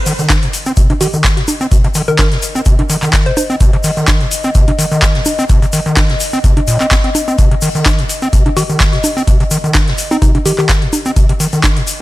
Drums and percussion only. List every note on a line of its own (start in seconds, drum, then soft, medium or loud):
0.05 open hi-hat medium
0.05 open hi-hat loud
0.05 shaker medium
0.19 closed hi-hat soft
0.19 shaker soft
0.29 kick loud
0.29 snare loud
0.29 clap loud
0.29 closed hi-hat medium
0.29 high conga medium
0.29 shaker soft
0.43 closed hi-hat medium
0.43 closed hi-hat soft
0.53 closed hi-hat medium
0.53 open hi-hat loud
0.53 shaker medium
0.66 shaker soft
0.77 kick loud
0.77 closed hi-hat medium
0.77 shaker medium
0.90 closed hi-hat medium
0.90 high conga soft
1.01 closed hi-hat medium
1.01 open hi-hat loud
1.01 shaker medium
1.13 shaker soft
1.24 kick loud
1.24 snare loud
1.24 clap loud
1.24 closed hi-hat medium
1.24 shaker soft
1.36 snare soft
1.36 closed hi-hat medium
1.48 closed hi-hat medium
1.48 open hi-hat loud
1.48 high conga medium
1.48 shaker medium
1.61 closed hi-hat soft
1.61 shaker soft
1.72 kick loud
1.72 closed hi-hat medium
1.72 shaker medium
1.84 closed hi-hat soft
1.84 closed hi-hat medium
1.95 closed hi-hat medium
1.95 open hi-hat loud
1.95 shaker medium
2.07 closed hi-hat soft
2.07 shaker soft
2.18 kick loud
2.18 snare loud
2.18 clap loud
2.18 closed hi-hat medium
2.18 high conga medium
2.18 shaker medium
2.32 snare soft
2.32 closed hi-hat medium
2.42 closed hi-hat medium
2.42 open hi-hat loud
2.42 shaker medium
2.55 closed hi-hat soft
2.55 shaker soft
2.65 kick loud
2.65 closed hi-hat medium
2.65 shaker soft
2.79 closed hi-hat soft
2.79 high conga soft
2.89 closed hi-hat medium
2.89 open hi-hat loud
2.89 shaker loud
3.02 clap soft
3.02 shaker soft
3.13 kick loud
3.13 snare loud
3.13 clap loud
3.13 closed hi-hat medium
3.13 shaker soft
3.26 closed hi-hat medium
3.37 closed hi-hat medium
3.37 open hi-hat loud
3.37 high conga medium
3.37 shaker medium
3.50 shaker soft
3.61 kick loud
3.61 closed hi-hat medium
3.61 shaker soft
3.73 closed hi-hat soft
3.84 open hi-hat loud
3.84 open hi-hat medium
3.84 shaker loud
3.97 closed hi-hat soft
3.97 shaker soft
4.07 kick loud
4.07 snare loud
4.07 clap loud
4.07 closed hi-hat medium
4.07 high conga medium
4.07 shaker medium
4.21 closed hi-hat medium
4.21 closed hi-hat soft
4.31 closed hi-hat medium
4.31 open hi-hat loud
4.31 shaker loud
4.44 shaker soft
4.55 kick loud
4.55 closed hi-hat medium
4.55 shaker medium
4.68 closed hi-hat medium
4.68 high conga soft
4.79 closed hi-hat medium
4.79 open hi-hat loud
4.79 shaker loud
4.92 shaker soft
5.01 kick loud
5.01 snare loud
5.01 clap loud
5.01 closed hi-hat medium
5.01 shaker medium
5.15 snare soft
5.15 closed hi-hat medium
5.25 closed hi-hat medium
5.25 open hi-hat loud
5.25 high conga medium
5.25 shaker medium
5.38 closed hi-hat soft
5.38 shaker soft
5.49 kick loud
5.49 closed hi-hat medium
5.49 shaker medium
5.62 closed hi-hat soft
5.62 shaker soft
5.73 closed hi-hat medium
5.73 open hi-hat loud
5.73 shaker medium
5.86 closed hi-hat soft
5.86 shaker soft
5.96 kick loud
5.96 snare loud
5.96 clap loud
5.96 closed hi-hat medium
5.96 high conga medium
5.96 shaker medium
6.10 snare medium
6.10 closed hi-hat soft
6.20 closed hi-hat medium
6.20 open hi-hat loud
6.20 shaker loud
6.33 closed hi-hat soft
6.33 shaker soft
6.44 kick loud
6.44 closed hi-hat medium
6.44 shaker medium
6.57 closed hi-hat soft
6.57 high conga soft
6.67 closed hi-hat medium
6.67 open hi-hat loud
6.67 shaker medium
6.80 clap soft
6.80 shaker soft
6.91 kick loud
6.91 snare loud
6.91 clap loud
6.91 closed hi-hat medium
6.91 shaker soft
7.04 closed hi-hat soft
7.15 closed hi-hat medium
7.15 open hi-hat loud
7.15 high conga medium
7.15 shaker medium
7.28 shaker soft
7.38 kick loud
7.38 closed hi-hat medium
7.38 shaker medium
7.51 closed hi-hat medium
7.62 open hi-hat loud
7.62 open hi-hat medium
7.62 shaker medium
7.75 closed hi-hat soft
7.75 shaker soft
7.84 kick loud
7.84 snare loud
7.84 clap loud
7.84 closed hi-hat medium
7.84 high conga medium
7.84 shaker soft
7.99 closed hi-hat soft
8.09 closed hi-hat medium
8.09 open hi-hat loud
8.09 shaker medium
8.22 shaker soft
8.33 kick loud
8.33 closed hi-hat medium
8.33 shaker medium
8.46 closed hi-hat soft
8.46 high conga soft
8.57 closed hi-hat medium
8.57 open hi-hat loud
8.57 shaker medium
8.69 shaker soft
8.80 kick loud
8.80 snare loud
8.80 clap loud
8.80 closed hi-hat medium
8.80 shaker soft
8.93 snare soft
8.93 closed hi-hat soft
9.03 closed hi-hat medium
9.03 open hi-hat loud
9.03 high conga medium
9.03 shaker medium
9.17 closed hi-hat soft
9.17 shaker soft
9.27 kick loud
9.27 closed hi-hat medium
9.27 shaker soft
9.40 closed hi-hat medium
9.40 closed hi-hat soft
9.51 closed hi-hat medium
9.51 open hi-hat loud
9.51 shaker medium
9.64 closed hi-hat soft
9.64 shaker soft
9.74 kick loud
9.74 snare loud
9.74 clap loud
9.74 closed hi-hat medium
9.74 high conga medium
9.74 shaker medium
9.88 snare medium
9.88 closed hi-hat soft
9.98 closed hi-hat medium
9.98 open hi-hat loud
9.98 shaker medium
10.11 closed hi-hat soft
10.11 shaker soft
10.22 kick loud
10.22 closed hi-hat medium
10.22 shaker soft
10.35 closed hi-hat medium
10.35 high conga soft
10.45 closed hi-hat medium
10.45 open hi-hat loud
10.45 shaker medium
10.58 clap soft
10.58 shaker soft
10.69 kick loud
10.69 snare loud
10.69 clap loud
10.69 closed hi-hat medium
10.69 shaker medium
10.82 closed hi-hat soft
10.93 closed hi-hat medium
10.93 open hi-hat loud
10.93 high conga medium
10.93 shaker medium
11.05 shaker soft
11.16 kick loud
11.16 closed hi-hat medium
11.16 shaker soft
11.29 closed hi-hat medium
11.40 open hi-hat loud
11.40 open hi-hat medium
11.40 shaker medium
11.53 closed hi-hat soft
11.53 shaker soft
11.63 kick loud
11.63 snare loud
11.63 clap loud
11.63 closed hi-hat medium
11.63 high conga medium
11.63 shaker medium
11.77 closed hi-hat soft
11.77 closed hi-hat medium
11.87 closed hi-hat medium
11.87 open hi-hat loud
11.87 shaker medium